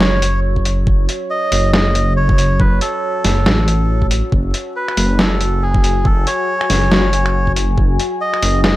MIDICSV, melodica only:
0, 0, Header, 1, 2, 480
1, 0, Start_track
1, 0, Tempo, 431655
1, 969, Time_signature, 4, 2, 24, 8
1, 9746, End_track
2, 0, Start_track
2, 0, Title_t, "Melodica"
2, 0, Program_c, 0, 22
2, 0, Note_on_c, 0, 73, 103
2, 445, Note_off_c, 0, 73, 0
2, 1450, Note_on_c, 0, 75, 107
2, 1909, Note_off_c, 0, 75, 0
2, 1925, Note_on_c, 0, 75, 108
2, 2373, Note_off_c, 0, 75, 0
2, 2408, Note_on_c, 0, 73, 99
2, 2887, Note_on_c, 0, 71, 96
2, 2902, Note_off_c, 0, 73, 0
2, 3111, Note_off_c, 0, 71, 0
2, 3127, Note_on_c, 0, 69, 90
2, 4523, Note_off_c, 0, 69, 0
2, 5295, Note_on_c, 0, 71, 91
2, 5778, Note_on_c, 0, 69, 91
2, 5786, Note_off_c, 0, 71, 0
2, 6255, Note_on_c, 0, 68, 92
2, 6267, Note_off_c, 0, 69, 0
2, 6733, Note_on_c, 0, 69, 102
2, 6746, Note_off_c, 0, 68, 0
2, 6972, Note_on_c, 0, 73, 110
2, 6978, Note_off_c, 0, 69, 0
2, 8366, Note_off_c, 0, 73, 0
2, 9129, Note_on_c, 0, 75, 113
2, 9575, Note_off_c, 0, 75, 0
2, 9610, Note_on_c, 0, 75, 109
2, 9746, Note_off_c, 0, 75, 0
2, 9746, End_track
0, 0, End_of_file